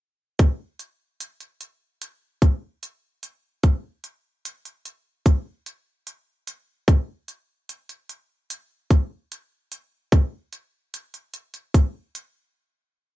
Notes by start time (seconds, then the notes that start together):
0.39 kick, closed hi-hat
0.79 closed hi-hat
1.20 closed hi-hat
1.40 closed hi-hat
1.61 closed hi-hat
2.02 closed hi-hat
2.42 kick, closed hi-hat
2.83 closed hi-hat
3.23 closed hi-hat
3.63 kick, closed hi-hat
4.04 closed hi-hat
4.45 closed hi-hat
4.65 closed hi-hat
4.85 closed hi-hat
5.26 kick, closed hi-hat
5.66 closed hi-hat
6.07 closed hi-hat
6.47 closed hi-hat
6.88 kick, closed hi-hat
7.28 closed hi-hat
7.69 closed hi-hat
7.89 closed hi-hat
8.09 closed hi-hat
8.50 closed hi-hat
8.91 kick, closed hi-hat
9.32 closed hi-hat
9.72 closed hi-hat
10.12 kick, closed hi-hat
10.53 closed hi-hat
10.94 closed hi-hat
11.14 closed hi-hat
11.34 closed hi-hat
11.54 closed hi-hat
11.74 kick, closed hi-hat
12.15 closed hi-hat